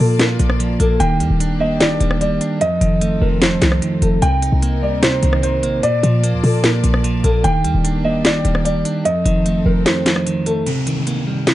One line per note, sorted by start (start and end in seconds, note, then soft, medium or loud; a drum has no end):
0.00 0.18 A#2 loud
0.00 0.38 A#2 loud
0.00 0.38 F3 medium
0.00 0.79 A#3 medium
0.00 2.58 A#3 medium
0.00 0.98 F4 medium
0.00 0.15 A4 medium
0.00 0.98 D5 medium
0.00 0.98 A5 medium
0.19 1.00 A#2 loud
0.19 0.76 A#4 medium
0.19 snare loud
0.19 clap loud
0.19 closed hi-hat medium
0.39 0.78 A#1 loud
0.39 0.58 F3 medium
0.39 closed hi-hat medium
0.50 cross-stick loud
0.60 1.00 F3 medium
0.60 closed hi-hat medium
0.80 0.99 A#1 loud
0.80 1.00 A#3 medium
0.80 0.95 A4 medium
0.80 closed hi-hat medium
1.00 1.22 D#1 loud
1.00 1.79 D#3 medium
1.00 2.60 D#3 medium
1.00 2.60 D4 medium
1.00 2.60 G4 medium
1.00 1.57 G5 loud
1.00 closed hi-hat medium
1.20 1.30 D#2 loud
1.20 1.99 G3 medium
1.20 closed hi-hat medium
1.30 1.98 D#1 loud
1.40 2.40 D4 medium
1.40 closed hi-hat medium
1.60 2.61 A#3 medium
1.60 1.76 D#5 medium
1.80 2.61 D#3 medium
1.80 2.18 D5 loud
1.80 snare loud
1.80 clap loud
1.80 closed hi-hat medium
2.00 2.39 D#1 loud
2.00 2.20 G3 medium
2.00 closed hi-hat medium
2.11 cross-stick loud
2.21 2.61 G3 medium
2.21 2.59 D5 medium
2.21 closed hi-hat medium
2.41 2.61 D4 medium
2.41 closed hi-hat medium
2.61 3.40 F2 loud
2.61 4.21 F3 medium
2.61 4.21 C4 medium
2.61 4.21 D#4 medium
2.61 4.21 A4 medium
2.61 3.18 D#5 loud
2.61 closed hi-hat medium
2.81 3.20 F1 loud
2.81 3.60 D#3 medium
2.81 closed hi-hat medium
3.01 4.01 A3 medium
3.01 closed hi-hat medium
3.21 3.60 F1 loud
3.21 4.22 F3 medium
3.21 3.37 A#4 medium
3.41 4.22 F2 medium
3.41 3.98 C5 medium
3.41 snare loud
3.41 clap loud
3.41 closed hi-hat medium
3.62 3.81 C2 loud
3.62 3.81 D#3 medium
3.62 snare loud
3.62 clap medium
3.62 closed hi-hat medium
3.72 cross-stick loud
3.82 4.22 D#3 medium
3.82 closed hi-hat medium
4.02 4.21 F1 loud
4.02 4.22 A3 medium
4.02 4.17 A4 medium
4.02 closed hi-hat medium
4.22 4.51 C2 loud
4.22 5.82 C3 medium
4.22 5.02 C3 medium
4.22 5.82 C4 medium
4.22 5.82 D#4 medium
4.22 5.82 A#4 medium
4.22 4.79 G5 loud
4.22 closed hi-hat medium
4.42 5.43 D#4 medium
4.42 closed hi-hat medium
4.52 4.94 C2 loud
4.62 5.62 A#3 medium
4.62 closed hi-hat medium
4.83 5.22 G3 medium
4.83 4.98 D5 medium
4.93 5.21 D2 loud
5.03 5.83 C3 medium
5.03 5.41 C5 loud
5.03 snare loud
5.03 clap loud
5.03 closed hi-hat medium
5.23 5.65 C2 loud
5.23 5.42 D#3 medium
5.23 closed hi-hat medium
5.33 cross-stick loud
5.43 5.83 D#3 medium
5.43 5.81 C5 medium
5.43 closed hi-hat medium
5.63 5.82 A#1 loud
5.63 5.83 A#3 medium
5.63 closed hi-hat medium
5.83 6.63 A#2 medium
5.83 7.43 A#3 medium
5.83 7.43 F4 medium
5.83 6.40 D5 loud
5.83 7.43 D5 medium
5.83 7.43 A5 medium
5.83 closed hi-hat medium
6.03 6.35 A#2 loud
6.03 6.83 F3 medium
6.03 closed hi-hat medium
6.23 7.23 A#3 medium
6.23 closed hi-hat medium
6.33 6.43 D2 loud
6.44 6.82 A#2 loud
6.44 6.59 A4 medium
6.44 open hi-hat medium
6.64 7.44 A#2 medium
6.64 7.21 A#4 medium
6.64 snare loud
6.64 clap loud
6.64 closed hi-hat medium
6.84 7.22 A#1 loud
6.84 7.03 F3 medium
6.84 closed hi-hat medium
6.94 cross-stick loud
7.04 7.44 F3 medium
7.04 closed hi-hat medium
7.24 7.43 A#1 loud
7.24 7.44 A#3 medium
7.24 7.39 A4 medium
7.24 closed hi-hat medium
7.44 7.66 D#1 loud
7.44 8.23 D#3 medium
7.44 9.04 D#3 medium
7.44 9.04 A#3 medium
7.44 9.04 D4 medium
7.44 9.04 G4 medium
7.44 8.01 G5 loud
7.44 closed hi-hat medium
7.64 7.74 D#2 loud
7.64 8.44 G3 medium
7.64 closed hi-hat medium
7.74 8.42 D#1 loud
7.84 8.84 D4 medium
7.84 closed hi-hat medium
8.05 9.05 A#3 medium
8.05 8.20 D#5 medium
8.25 9.05 D#3 medium
8.25 8.63 D5 loud
8.25 snare loud
8.25 clap loud
8.25 closed hi-hat medium
8.45 8.84 D#1 loud
8.45 8.64 G3 medium
8.45 closed hi-hat medium
8.55 cross-stick loud
8.65 9.05 G3 medium
8.65 9.03 D5 medium
8.65 closed hi-hat medium
8.85 9.05 D4 medium
8.85 closed hi-hat medium
9.05 9.85 F2 loud
9.05 10.65 F3 medium
9.05 10.65 C4 medium
9.05 10.65 D#4 medium
9.05 10.65 A4 medium
9.05 9.62 D#5 loud
9.05 closed hi-hat medium
9.25 9.64 F1 loud
9.25 10.05 D#3 medium
9.25 closed hi-hat medium
9.46 10.45 A3 medium
9.46 closed hi-hat medium
9.66 9.85 F1 loud
9.66 10.66 F3 medium
9.66 9.81 A#4 medium
9.86 10.66 F2 medium
9.86 10.43 C5 medium
9.86 snare loud
9.86 clap loud
9.86 closed hi-hat medium
10.06 10.25 D#3 medium
10.06 snare loud
10.06 clap medium
10.06 closed hi-hat medium
10.16 cross-stick loud
10.26 10.67 D#3 medium
10.26 closed hi-hat medium
10.46 10.67 A3 medium
10.46 10.62 A4 medium
10.46 closed hi-hat medium
10.66 11.46 C3 medium
10.66 closed hi-hat medium
10.66 downlifter medium
10.87 11.54 D#3 medium
10.87 closed hi-hat medium
11.07 11.27 A#3 medium
11.07 closed hi-hat medium
11.27 11.54 G3 medium
11.47 11.54 C3 medium
11.47 snare loud
11.47 clap loud
11.47 closed hi-hat medium